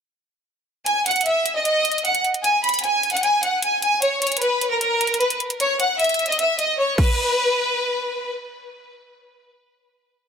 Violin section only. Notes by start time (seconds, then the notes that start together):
0.86 G#5
1.06 F#5
1.26 E5
1.55 D#5
1.65 D#5
2.05 F#5
2.44 G#5
2.64 B5
2.84 G#5
3.13 F#5
3.23 G#5
3.43 F#5
3.63 G#5
3.82 G#5
4.02 C#5
4.21 C#5
4.42 B4
4.71 A#4
4.81 A#4
5.20 B4
5.60 C#5
5.80 F#5
5.99 E5
6.29 D#5
6.39 E5
6.59 D#5
6.79 C#5
6.98 B4